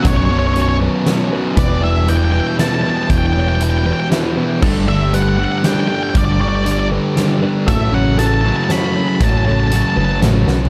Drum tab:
CC |------------------|------------------|------------------|x-----------------|
HH |x-----x-----x-----|x-----x-----x-----|x-----x-----x-----|------x-----x-----|
SD |------------o-----|------------o-----|------------o-----|------------o-----|
FT |------------------|------------------|------------------|------------------|
BD |o-----------------|o-----------------|o-----------------|o-----------------|

CC |------------------|------------------|------------------|
HH |x-----x-----x-----|x-----x-----x-----|x-----x-----x-----|
SD |------------o-----|------------o-----|------------o--o--|
FT |------------------|------------------|-----------------o|
BD |o-----------------|o-----------------|o-----------------|